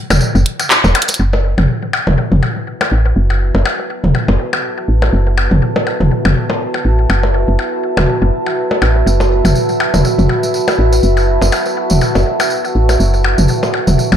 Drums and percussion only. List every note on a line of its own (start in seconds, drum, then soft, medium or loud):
0.10 mid tom medium
0.10 tambourine medium
0.10 percussion blips medium
0.21 tambourine medium
0.35 tambourine soft
0.46 closed hi-hat medium
0.59 closed hi-hat soft
0.59 tambourine medium
0.59 percussion blips soft
0.70 clap loud
0.70 tambourine medium
0.84 tambourine soft
0.84 percussion blips medium
0.95 closed hi-hat medium
0.95 percussion blips medium
1.02 closed hi-hat medium
1.08 closed hi-hat medium
1.08 tambourine medium
1.14 closed hi-hat medium
1.33 percussion blips medium
1.58 mid tom medium
1.58 percussion blips soft
1.93 percussion blips medium
2.07 mid tom medium
2.07 percussion blips medium
2.32 mid tom medium
2.43 percussion blips soft
2.81 percussion blips medium
3.30 percussion blips soft
3.55 percussion blips medium
3.65 percussion blips medium
4.04 mid tom medium
4.15 percussion blips soft
4.28 percussion blips medium
4.53 percussion blips medium
5.02 percussion blips medium
5.02 percussion blips soft
5.38 percussion blips medium
5.51 mid tom medium
5.76 percussion blips medium
5.87 percussion blips soft
6.00 mid tom medium
6.25 mid tom medium
6.25 percussion blips medium
6.50 percussion blips medium
6.74 percussion blips soft
7.10 percussion blips medium
7.23 percussion blips medium
7.59 percussion blips soft
7.97 mid tom medium
7.97 percussion blips medium
8.46 percussion blips soft
8.71 percussion blips medium
8.82 percussion blips medium
9.07 tambourine medium
9.20 tambourine soft
9.20 percussion blips medium
9.45 mid tom medium
9.45 tambourine medium
9.45 percussion blips soft
9.55 tambourine medium
9.69 tambourine soft
9.80 percussion blips medium
9.94 mid tom medium
9.94 tambourine medium
9.94 percussion blips medium
10.05 tambourine medium
10.19 mid tom medium
10.19 tambourine soft
10.29 percussion blips soft
10.43 tambourine medium
10.54 tambourine medium
10.68 tambourine soft
10.68 percussion blips medium
10.93 tambourine medium
11.03 tambourine medium
11.17 tambourine soft
11.17 percussion blips soft
11.42 tambourine medium
11.42 percussion blips medium
11.52 tambourine medium
11.52 percussion blips medium
11.66 tambourine soft
11.90 mid tom medium
11.90 tambourine medium
12.01 tambourine medium
12.01 percussion blips soft
12.15 tambourine soft
12.15 percussion blips medium
12.40 tambourine medium
12.40 percussion blips medium
12.50 tambourine medium
12.65 tambourine soft
12.89 tambourine medium
12.89 percussion blips medium
12.89 percussion blips soft
13.00 tambourine medium
13.14 tambourine soft
13.24 percussion blips medium
13.38 mid tom medium
13.38 tambourine medium
13.48 tambourine medium
13.63 tambourine soft
13.63 percussion blips medium
13.74 percussion blips soft
13.87 mid tom medium
13.87 tambourine medium
13.99 tambourine medium
14.12 mid tom medium
14.12 tambourine soft
14.12 percussion blips medium